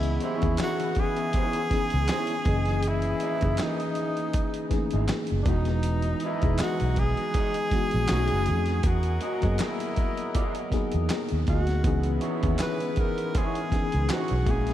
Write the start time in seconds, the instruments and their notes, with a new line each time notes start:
Already playing: fingered electric bass C#2, horn section C#3 B3 E4, tine electric piano E3 B3 C#4 G#4 D#5, tenor saxophone E4
0.03 closed hi-hat
0.20 clean electric guitar A#3 D#4 G4 C5, tenor saxophone E4, closed hi-hat
0.35 clean electric guitar B3 E4 G#4 C#5
0.41 fingered electric bass D#2, tine electric piano E3 B3 C#4 D#4 G#4, kick, closed hi-hat
0.57 clean electric guitar B3 E4 G#4 C#5, snare, clap, closed hi-hat
0.63 tenor saxophone F#4
0.80 closed hi-hat
0.95 kick, closed hi-hat
1.00 tenor saxophone G#4
1.17 closed hi-hat
1.33 clean electric guitar B3 E4 G#4 C#5, kick, closed hi-hat
1.53 closed hi-hat
1.70 tine electric piano E3 B3 C#4 D#4 G#4, muted fingered electric bass stroke, kick, snare, closed hi-hat
1.90 fingered electric bass C#2, closed hi-hat
2.08 clean electric guitar B3 E4 G#4 C#5, snare, clap, closed hi-hat
2.27 closed hi-hat
2.45 fingered electric bass F#1, tine electric piano E3 A#3 C#4 G#4 D#5, horn section E3 G#4 D#5, kick, closed hi-hat
2.65 snare, closed hi-hat
2.83 closed hi-hat
2.88 tenor saxophone E4
3.02 closed hi-hat
3.20 clean electric guitar A#3 E4 G#4 D#5, closed hi-hat
3.41 fingered electric bass F#1, tine electric piano E3 A#3 C#4 D#4 G#4, kick, closed hi-hat
3.57 clean electric guitar A#3 E4 G#4 D#5, snare, clap, closed hi-hat
3.62 tenor saxophone D#4
3.80 closed hi-hat
3.95 closed hi-hat
4.17 closed hi-hat
4.33 kick, closed hi-hat
4.54 closed hi-hat
4.70 tine electric piano E3 A3 C#4 D#4 G#4, muted fingered electric bass stroke, kick, snare, closed hi-hat
4.77 tine electric piano A#3
4.91 fingered electric bass G#1, clean electric guitar A#3 E4 G#4 D#5, closed hi-hat
5.08 snare, clap, closed hi-hat
5.27 closed hi-hat
5.32 fingered electric bass F#1
5.42 tine electric piano E3 G#3, tenor saxophone D4, horn section D#5 A#5, kick, closed hi-hat
5.46 fingered electric bass E1, horn section E3, tine electric piano B3 D#4 F#4, clean electric guitar D#4 G#4 B4 D#5, tenor saxophone D#4
5.65 snare, closed hi-hat
5.83 closed hi-hat
6.02 closed hi-hat
6.20 clean electric guitar D#4 G#4, closed hi-hat
6.24 tenor saxophone E4, clean electric guitar B4 D#5
6.41 fingered electric bass E1, tine electric piano E3 G#3 B3 D#4 G#4, kick, closed hi-hat
6.58 clean electric guitar D#4 G#4 B4 D#5, snare, clap, closed hi-hat
6.62 tenor saxophone F#4
6.80 fingered electric bass B1, closed hi-hat
6.96 tenor saxophone G#4, kick, closed hi-hat
7.17 closed hi-hat
7.34 clean electric guitar D#4 G#4 B4 D#5, kick, closed hi-hat
7.54 closed hi-hat
7.71 tine electric piano E3 G#3 B3 D#4 F#4, muted fingered electric bass stroke, kick, snare, closed hi-hat
7.91 fingered electric bass A#1, closed hi-hat
8.08 fingered electric bass B1, horn section G#3 F#4 B4, clean electric guitar A3 D#4 G#4 C#5, tine electric piano A3 C#4 D#4 F#4, snare, clap, closed hi-hat
8.12 tine electric piano G#4
8.28 closed hi-hat
8.32 fingered electric bass F#1
8.46 fingered electric bass F2, closed hi-hat
8.66 snare, closed hi-hat
8.83 fingered electric bass E2, horn section F#3 A#4 D#5, tenor saxophone F#4, kick, closed hi-hat
9.03 closed hi-hat
9.21 clean electric guitar A#3 F#4 G#4 D#5, closed hi-hat
9.41 fingered electric bass F#2, tine electric piano F#3 A#3 B3 G#4 D#5, kick, closed hi-hat
9.58 clean electric guitar A#3 F#4 G#4 D#5, tenor saxophone E4, snare, clap, closed hi-hat
9.80 closed hi-hat
9.96 kick, closed hi-hat
10.17 closed hi-hat
10.35 clean electric guitar A#3 F#4 G#4 D#5, kick, closed hi-hat
10.55 closed hi-hat
10.71 tine electric piano F#3 A#3 B3 D#4 G#4, muted fingered electric bass stroke, kick, snare, closed hi-hat
10.92 fingered electric bass E2, closed hi-hat
11.09 snare, clap, closed hi-hat
11.29 fingered electric bass D#2, closed hi-hat
11.47 fingered electric bass D2, clean electric guitar A#3 F#4 G#4 D#5, tenor saxophone F#4, kick, closed hi-hat
11.67 snare, closed hi-hat
11.84 fingered electric bass C#2, tine electric piano E3 B3 C#4 D#4 G#4, horn section G#3 B3 E4, kick, closed hi-hat
12.03 closed hi-hat
12.21 clean electric guitar B3 E4 G#4 C#5, closed hi-hat
12.41 fingered electric bass D#2, tine electric piano E3 B3 C#4 D#4 G#4, kick, closed hi-hat
12.58 clean electric guitar B3 E4 G#4 C#5, snare, clap, closed hi-hat
12.62 tenor saxophone B4
12.80 closed hi-hat
12.96 tenor saxophone A#4, kick, closed hi-hat
13.18 closed hi-hat
13.34 clean electric guitar B3 E4 G#4 C#5, tenor saxophone G#4, kick, closed hi-hat
13.55 closed hi-hat
13.70 tine electric piano E3 B3 C#4 D#4 G#4, muted fingered electric bass stroke, kick, snare, closed hi-hat
13.92 fingered electric bass C#2, closed hi-hat
14.09 clean electric guitar B3 E4 G#4 C#5, tenor saxophone F#4, snare, clap, closed hi-hat
14.28 fingered electric bass B1, closed hi-hat
14.45 fingered electric bass A#1, horn section C#3 A#3 E4, tine electric piano G#3 A#3 C4 E4 G#4, kick, closed hi-hat
14.50 tine electric piano C#4, tenor saxophone G#4
14.67 snare, closed hi-hat